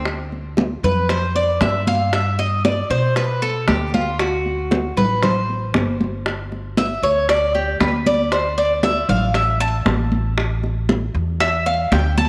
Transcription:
Already playing: D2
0.05 high bongo, high conga
0.32 high conga
0.57 high bongo, high conga
0.83 F2 B4, high conga, low conga
1.09 C5, high bongo, high conga
1.35 D5, high conga
1.61 G2 E5, high bongo, low bongo, high conga
1.87 F5, high conga
2.13 E5, high bongo, high conga
2.39 D#5, high bongo, high conga
2.65 D5, high bongo, high conga
2.90 B2 C5, high bongo, high conga
3.16 B4, high bongo, high conga
3.42 A4, high conga
3.68 D2 G4, high bongo, low bongo, high conga
3.94 F4, high bongo, high conga
4.19 F#4, high bongo, high conga
4.46 high conga
4.71 high bongo, high conga
4.97 A1 B4, high conga, low conga
5.23 C5, high bongo, high conga, low conga
5.50 high conga
5.74 G1, high bongo, low bongo, high conga
6.01 high conga
6.26 high bongo, high conga
6.52 high bongo, high conga
6.77 E5, high bongo, high conga
7.03 D2 C#5, high bongo, high conga
7.29 D5, high bongo, high conga
7.55 G4, high conga
7.80 D2 B4, high bongo, low bongo, high conga
8.06 D5, high bongo, high conga
8.32 C5, high bongo, high conga
8.58 D5, high conga
8.83 E5, high bongo, high conga
9.09 A1 F5, high conga, low conga
9.34 E5, high bongo, high conga
9.60 A5, high conga
9.86 A1, high bongo, low bongo, high conga
10.12 high conga
10.38 high bongo, high conga
10.63 high bongo, high conga
10.89 high bongo, high conga
11.15 E2, high bongo, high conga
11.40 E5, high bongo, high conga
11.66 F5, high conga
11.92 D2 G5, high bongo, low bongo, high conga
12.18 A5, high bongo, high conga

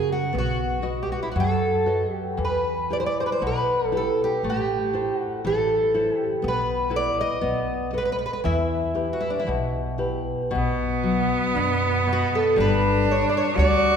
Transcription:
Already playing: C#3 C#4 F#4 G#4 A#4
0.12 F#4
0.33 B1 B3
0.38 F#4
0.82 F#4 B4 D#5
1.03 G4
1.12 F#4
1.23 E4
1.32 F#2 F#4
1.36 F#3
1.40 A4
1.86 F#4 B4 D#5
2.13 G4
2.37 E2 E3
2.44 B4
2.90 E4 G4 B4 D5
3.00 C5
3.06 D5
3.20 C5
3.26 B4
3.32 C5
3.42 B1 B2
3.47 B4
3.92 E4 G4 B4
3.97 A4
4.24 G4
4.43 A1 A3
4.50 G4
4.93 E4 A4 C5
5.17 F#4
5.45 A1 E3 A4
5.94 E4 A4 C5
6.17 G4
6.42 B1 B3
6.48 B4
6.90 E4 A4 B4
6.96 D5
7.21 D#5
7.41 B1 B3
7.93 A4 B4 D#5
7.98 B4
8.05 B4
8.12 B4
8.19 B4
8.26 B4
8.33 B4
8.44 E2 E3 E4
8.95 E4 G4 B4
9.13 F#4
9.20 E4
9.30 D4
9.40 E4
9.47 B1 B2
9.98 E4 G4 B4
10.51 B2 B3
10.55 B1
11.03 F#3
11.55 F#2 D4
12.07 B2
12.13 F#4
12.35 A4
12.56 G1 G3 D4
12.60 B4
13.05 D4
13.11 C#5
13.29 D5
13.37 C#5
13.55 D2 G3 F#4 D5

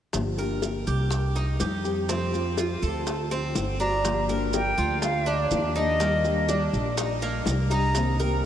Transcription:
0.13 G1 D3 F3 A#3 D4 G4, high bongo, maracas
0.38 F3 A#3 D4 G4 A#4, high bongo, maracas
0.62 F3 A#3 D4 G4, high bongo, maracas
0.87 C2 G4, maracas
1.11 muted nylon-string guitar stroke, high bongo, maracas
1.36 D#4, high bongo, maracas
1.60 F2 D#3 G3 C4 G4, high bongo, low bongo, maracas
1.84 D#3 G3 C4 G4, high bongo, maracas
2.08 C3 F3 A3 C4 F4, high bongo, maracas
2.33 F3 A3 C4 F4, high bongo, maracas
2.57 F3 A3 C4 F4, high bongo, maracas
2.82 D2 A4, maracas
3.07 muted nylon-string guitar stroke, high bongo, maracas
3.31 C4, high bongo, maracas
3.55 G1 D3 A3 C4 F#4, high bongo, low bongo, maracas
3.79 A3 C4 D4 F#4 A#5, high bongo, maracas
4.04 D3 F3 A#3 D4 G4, high bongo, maracas
4.28 F3 A#3 D4 G4 A#4, high bongo, maracas
4.53 F3 A#3 D4 G4 G5, high bongo, maracas
4.78 D2 F4, maracas
5.02 F5, muted nylon-string guitar stroke, high bongo, maracas
5.26 D4, high bongo, maracas
5.50 D#2 F3 A#3 D4 G4, high bongo, low bongo, maracas
5.75 F3 A#3 D4 D#4 G4 D#5, high bongo, maracas
5.99 D#3 G3 A#3 D4 G4, high bongo, maracas
6.24 G3 D4 G4, high bongo, maracas
6.48 D#3 G3 D4 G4, high bongo, maracas
6.73 A#1, maracas
6.97 D#4, muted nylon-string guitar stroke, high bongo, maracas
7.22 A#3, high bongo, maracas
7.46 C2 D#3 G3 D4 G4, high bongo, low bongo, maracas
7.70 G3 D4 D#4 G4 A#5, high bongo, maracas
7.95 C3 D#3 A#3 C4 G4, high bongo, maracas
8.19 D#3 A#3 C4 G4 A#4, high bongo, maracas

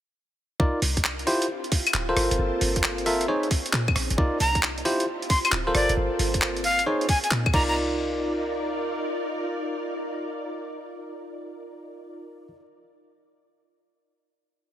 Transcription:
0.60 C2 D#4 F4 A#4 D5, kick
0.82 C2, open hi-hat
0.97 kick, closed hi-hat
1.04 clap
1.19 closed hi-hat
1.27 C4 E4 F4 G4 C5, open hi-hat
1.42 closed hi-hat
1.64 closed hi-hat
1.72 kick, open hi-hat
1.87 closed hi-hat, claves
1.94 D1, clap, closed hi-hat
2.09 F4 A4 A#4 C5
2.16 G1 A#3 A5, cross-stick, open hi-hat
2.31 F1, closed hi-hat
2.39 G1
2.61 G1, open hi-hat
2.76 kick, closed hi-hat
2.84 clap
2.98 closed hi-hat
3.06 F4 A4 A#4 E5, open hi-hat
3.21 closed hi-hat
3.28 C#4 D#4 G#4 C5 C#5
3.43 closed hi-hat
3.51 kick, open hi-hat
3.66 closed hi-hat
3.73 A#2, clap, closed hi-hat
3.88 kick, claves
3.96 A#1, cross-stick, open hi-hat
4.10 G#1, closed hi-hat
4.18 C2 D#4 F4 A#4 D5, kick
4.40 C2 A#5, open hi-hat
4.55 kick, closed hi-hat
4.63 clap
4.78 closed hi-hat
4.85 C4 E4 F4 G4 C5, open hi-hat
5.00 closed hi-hat
5.22 closed hi-hat
5.30 C6, kick, open hi-hat
5.45 C6, closed hi-hat, claves
5.52 D1, clap, closed hi-hat
5.67 F4 A4 A#4 C5
5.75 G1 A#3 C4 D5 A5, cross-stick, open hi-hat
5.89 F1, closed hi-hat
5.97 G1
6.19 G1, open hi-hat
6.34 kick, closed hi-hat
6.42 clap
6.57 closed hi-hat
6.64 F5, open hi-hat
6.79 closed hi-hat
6.86 D#4 G#4 C5 C#5
7.01 closed hi-hat
7.09 G#5, kick, cross-stick, open hi-hat
7.24 G#5, closed hi-hat
7.31 A#2, clap, closed hi-hat
7.46 kick, claves
7.54 C2 D#4 F4 A#4 D5 A#5, kick, crash
7.69 A#5

